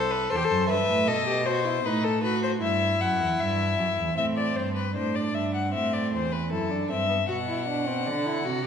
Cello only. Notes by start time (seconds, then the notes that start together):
Already playing: C2
0.31 E2
0.50 F#2
0.69 G2
0.89 A2
1.08 B2
1.85 A2
2.62 G2
3.01 F#2
3.20 E2
3.39 G2
3.78 F#2
3.97 E2
4.17 A2
4.56 G2
4.95 A2
5.34 G2
5.73 A2
6.12 E2
6.51 F#2
6.90 G2
7.29 B2
8.07 D3
8.46 C3